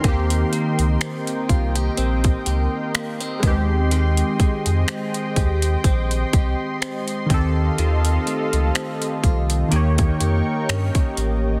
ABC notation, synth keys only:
X:1
M:4/4
L:1/8
Q:"Swing 16ths" 1/4=62
K:Ebmix
V:1 name="Synth keys"
[E,B,CG]6- [E,B,CG] [A,_C=CG]- | [A,_C=CG]6- [A,_C=CG] [E,CG=A]- | [E,CG=A]4 [E,B,Gd]4 |]